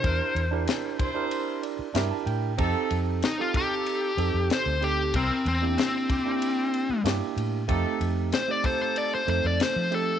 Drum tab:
RD |xxxxxxxx|xxxxxxxx|xxxxxxxx|xxxxxxxx|
SD |--o---o-|--o---o-|--o---o-|--o---o-|
BD |o--o----|o--o----|o--o----|o--o----|